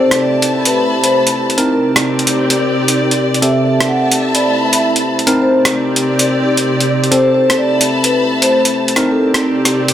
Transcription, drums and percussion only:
0.11 cross-stick, closed hi-hat
0.42 closed hi-hat
0.65 closed hi-hat
1.04 closed hi-hat
1.27 closed hi-hat
1.50 closed hi-hat
1.58 closed hi-hat
1.96 cross-stick, closed hi-hat
2.19 closed hi-hat
2.27 closed hi-hat
2.50 closed hi-hat
2.88 closed hi-hat
3.11 closed hi-hat
3.34 closed hi-hat
3.42 closed hi-hat
3.80 cross-stick, closed hi-hat
4.12 closed hi-hat
4.35 closed hi-hat
4.73 closed hi-hat
4.96 closed hi-hat
5.19 closed hi-hat
5.27 closed hi-hat
5.65 cross-stick, closed hi-hat
5.96 closed hi-hat
6.19 closed hi-hat
6.57 closed hi-hat
6.80 closed hi-hat
7.04 closed hi-hat
7.12 closed hi-hat
7.50 cross-stick, closed hi-hat
7.81 closed hi-hat
8.04 closed hi-hat
8.42 closed hi-hat
8.65 closed hi-hat
8.88 closed hi-hat
8.96 cross-stick, closed hi-hat
9.34 cross-stick, closed hi-hat
9.65 cross-stick, closed hi-hat
9.88 closed hi-hat

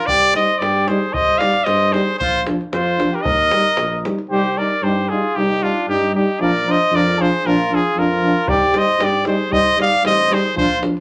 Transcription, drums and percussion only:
0.08 davul low
0.22 davul high
0.34 davul high
0.50 davul high
0.62 davul high
0.76 davul high
0.88 davul high
1.03 davul high
1.14 davul low
1.29 davul high
1.41 davul high
1.55 davul high
1.66 davul high
1.80 davul high
1.94 davul high
2.09 davul high
2.21 davul low
2.35 davul high
2.47 davul high
2.61 davul high
2.73 davul high
3.00 davul high
3.14 davul high
3.25 davul low
3.51 davul high
3.65 davul high
3.77 davul high
3.92 davul high
4.05 davul high
4.18 davul high
8.48 davul low
8.74 davul high
8.87 davul high
9.00 davul high
9.13 davul high
9.25 davul high
9.39 davul high
9.52 davul low
9.67 davul high
9.80 davul high
9.92 davul high
10.05 davul high
10.20 davul high
10.32 davul high
10.46 davul high
10.57 davul low
10.72 davul high
10.83 davul high
10.97 davul high

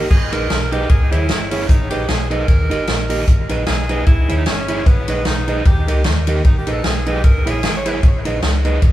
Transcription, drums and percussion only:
0.11 kick, crash
0.32 ride
0.50 snare, ride
0.72 ride
0.89 kick, ride
1.12 ride
1.29 snare, ride
1.51 open hi-hat, ride
1.69 kick, hi-hat pedal, ride
1.91 ride
2.08 snare, ride
2.31 ride
2.48 kick, ride
2.71 ride
2.87 snare, ride
3.10 open hi-hat, ride
3.28 kick, hi-hat pedal, ride
3.49 ride
3.67 snare, ride
3.89 ride
4.07 kick, ride
4.29 ride
4.46 snare, ride
4.68 ride
4.86 kick, ride
5.08 ride
5.25 snare, ride
5.48 ride
5.65 kick, ride
5.88 ride
6.04 snare, ride
6.27 ride
6.45 kick, ride
6.67 ride
6.84 snare, ride
7.06 ride
7.24 kick, ride
7.47 ride
7.63 snare, ride
7.86 ride
8.03 kick, ride
8.25 ride
8.42 snare, ride
8.65 ride
8.82 kick, ride

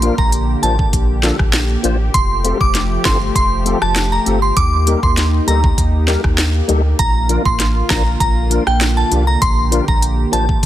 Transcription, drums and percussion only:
0.02 closed hi-hat
0.18 kick
0.32 closed hi-hat
0.63 closed hi-hat
0.79 kick
0.93 kick, closed hi-hat
1.23 snare, closed hi-hat
1.39 kick, cross-stick
1.53 snare, closed hi-hat
1.84 closed hi-hat
2.14 kick, closed hi-hat
2.45 closed hi-hat
2.61 kick
2.75 snare, closed hi-hat
3.05 kick, snare, closed hi-hat
3.35 kick, closed hi-hat
3.66 closed hi-hat
3.82 cross-stick
3.96 snare, closed hi-hat
4.26 closed hi-hat
4.57 kick, closed hi-hat
4.87 closed hi-hat
5.03 kick
5.17 snare, closed hi-hat
5.48 closed hi-hat
5.64 kick
5.78 kick, closed hi-hat
6.08 snare, closed hi-hat
6.24 kick, cross-stick
6.38 snare, closed hi-hat
6.69 closed hi-hat
6.99 kick, closed hi-hat
7.29 closed hi-hat
7.45 kick
7.60 snare, closed hi-hat
7.90 kick, snare, closed hi-hat
8.20 kick, closed hi-hat
8.51 closed hi-hat
8.67 cross-stick
8.81 snare, closed hi-hat
9.12 closed hi-hat
9.42 kick, closed hi-hat
9.72 closed hi-hat
9.88 kick
10.02 closed hi-hat
10.33 closed hi-hat
10.49 kick

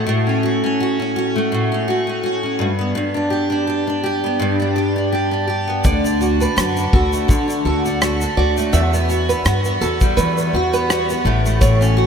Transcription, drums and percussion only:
5.85 kick, shaker
6.05 shaker
6.21 shaker
6.41 shaker
6.58 cross-stick, shaker
6.77 shaker
6.93 kick
7.13 shaker
7.29 kick, shaker
7.50 shaker
7.86 shaker
8.02 cross-stick, shaker
8.21 shaker
8.57 shaker
8.73 shaker
8.94 shaker
9.10 shaker
9.30 shaker
9.46 cross-stick, shaker
9.65 shaker
9.82 shaker
10.01 kick, shaker
10.18 shaker
10.38 shaker
10.74 shaker
10.90 cross-stick, shaker
11.10 shaker
11.46 shaker
11.62 kick, shaker
11.82 shaker

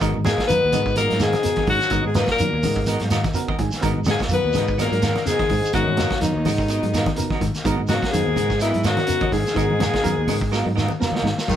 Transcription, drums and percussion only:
0.01 kick, closed hi-hat, shekere
0.14 high conga
0.25 snare, closed hi-hat, high conga, shekere
0.38 kick, snare, closed hi-hat, shekere
0.48 closed hi-hat, high conga, shekere
0.72 closed hi-hat, high conga, low conga, shekere
0.86 kick, shekere
0.95 closed hi-hat, high conga, shekere
1.10 snare, closed hi-hat
1.19 snare, closed hi-hat, shekere
1.32 snare, closed hi-hat, high conga, shekere
1.43 closed hi-hat, shekere
1.56 kick, snare, closed hi-hat, high conga
1.67 kick, open hi-hat, low conga, shekere
1.80 snare, closed hi-hat, shekere
1.90 kick, closed hi-hat, shekere
2.14 snare, closed hi-hat, high conga, shekere
2.26 kick, snare, closed hi-hat, shekere
2.38 closed hi-hat, shekere
2.63 open hi-hat, high conga, low conga, shekere
2.76 kick, shekere
2.86 closed hi-hat, high conga, shekere
2.99 snare, closed hi-hat
3.10 snare, closed hi-hat, shekere
3.24 kick, snare, closed hi-hat, high conga, shekere
3.34 closed hi-hat, shekere
3.48 kick, high conga
3.58 kick, closed hi-hat, low conga, shekere
3.71 snare, closed hi-hat, shekere
3.82 kick, closed hi-hat, shekere
4.05 snare, closed hi-hat, high conga, shekere
4.18 kick, snare, closed hi-hat, shekere
4.28 closed hi-hat, shekere
4.53 snare, closed hi-hat, high conga, low conga, shekere
4.67 kick, shekere
4.79 snare, closed hi-hat, high conga, low conga, shekere
4.92 closed hi-hat
5.02 snare, closed hi-hat, shekere
5.16 snare, closed hi-hat, high conga, shekere
5.26 snare, closed hi-hat, shekere
5.39 kick, snare, closed hi-hat, high conga
5.49 kick, open hi-hat, low conga, shekere
5.62 closed hi-hat, shekere
5.73 kick, closed hi-hat, shekere
5.88 high conga
5.97 snare, closed hi-hat, high conga, shekere
6.10 kick, snare, closed hi-hat, shekere
6.21 snare, closed hi-hat, shekere
6.45 open hi-hat, high conga, low conga, shekere
6.58 kick, shekere
6.68 closed hi-hat, shekere
6.83 closed hi-hat
6.94 snare, closed hi-hat, shekere
7.06 kick, snare, closed hi-hat, high conga, shekere
7.16 closed hi-hat, shekere
7.30 kick, snare, high conga
7.41 kick, closed hi-hat, low conga, shekere
7.54 snare, closed hi-hat, shekere
7.65 kick, closed hi-hat, shekere
7.88 snare, closed hi-hat, high conga, shekere
8.02 kick, snare, closed hi-hat, shekere
8.13 snare, closed hi-hat, shekere
8.36 closed hi-hat, high conga, low conga, shekere
8.50 kick, snare, shekere
8.60 snare, closed hi-hat, shekere
8.74 closed hi-hat
8.84 snare, closed hi-hat, shekere
8.97 snare, closed hi-hat, high conga, shekere
9.07 closed hi-hat, shekere
9.20 kick, closed hi-hat, high conga
9.32 kick, snare, open hi-hat, low conga, shekere
9.46 snare, closed hi-hat, shekere
9.56 kick, closed hi-hat, shekere
9.70 high conga
9.80 snare, closed hi-hat, high conga, shekere
9.94 kick, snare, closed hi-hat, shekere
10.03 closed hi-hat, high conga, shekere
10.28 open hi-hat, high conga, low conga, shekere
10.41 kick, shekere
10.53 snare, shekere
10.77 snare, shekere
10.88 high conga, shekere
11.02 snare, shekere
11.12 snare, high conga
11.22 snare, low conga
11.26 shekere
11.38 snare, shekere
11.48 kick, crash, shekere

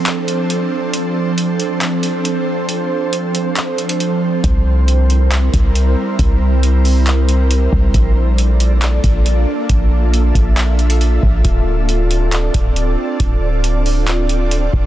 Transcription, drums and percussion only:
0.06 clap, closed hi-hat
0.28 closed hi-hat
0.50 closed hi-hat
0.94 closed hi-hat
1.38 closed hi-hat
1.60 closed hi-hat
1.81 clap, closed hi-hat
2.03 closed hi-hat
2.25 closed hi-hat
2.69 closed hi-hat
3.13 closed hi-hat
3.35 closed hi-hat
3.56 clap, closed hi-hat
3.78 closed hi-hat
3.89 closed hi-hat
4.00 closed hi-hat
4.44 kick, closed hi-hat
4.88 closed hi-hat
5.10 closed hi-hat
5.31 clap, closed hi-hat
5.54 kick, closed hi-hat
5.75 closed hi-hat
6.19 kick, closed hi-hat
6.63 closed hi-hat
6.85 open hi-hat
7.07 clap, closed hi-hat
7.29 closed hi-hat
7.51 closed hi-hat
7.73 kick
7.94 kick, closed hi-hat
8.38 closed hi-hat
8.60 closed hi-hat
8.82 clap, closed hi-hat
9.04 kick, closed hi-hat
9.26 closed hi-hat
9.69 kick, closed hi-hat
10.14 closed hi-hat
10.35 kick, closed hi-hat
10.57 clap, closed hi-hat
10.79 closed hi-hat
10.90 closed hi-hat
11.01 closed hi-hat
11.23 kick
11.45 kick, closed hi-hat
11.89 closed hi-hat
12.11 closed hi-hat
12.32 clap, closed hi-hat
12.54 kick, closed hi-hat
12.76 closed hi-hat
13.20 kick, closed hi-hat
13.64 closed hi-hat
13.86 open hi-hat
14.07 clap, closed hi-hat
14.29 closed hi-hat
14.51 closed hi-hat
14.73 kick

